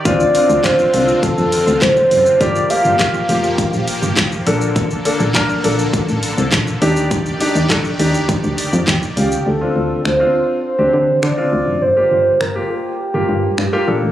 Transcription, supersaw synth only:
\new Staff \with { instrumentName = "Supersaw synth" } { \time 4/4 \key g \minor \tempo 4 = 102 <d c' f'>1 | <f bes g'>2.~ <f bes g'>8 <d bes a'>8~ | <d bes a'>2.~ <d bes a'>8 <ees g' d''>8~ | <ees g' d''>1 |
r1 | r1 | }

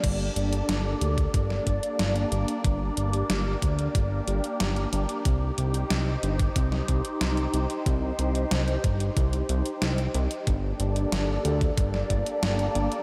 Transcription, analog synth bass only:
\new Staff \with { instrumentName = "Analog synth bass" } { \clef bass \time 4/4 \key g \minor \tempo 4 = 92 g,,8 g,,8 g,,8 d,8 g,,8 g,,8 g,,8 g,,8 | g,,8 g,,8 g,,8 d,8 g,,8 g,,8 g,,8 g,,8 | c,8 c,8 c,8 g,,8 c,8 c,8 c,8 c,8 | c,8 c,8 c,8 g,,8 c,8 c,8 c,8 c,8 |
g,,8 g,,8 g,,8 d,8 g,,8 g,,8 g,,8 g,,8 | }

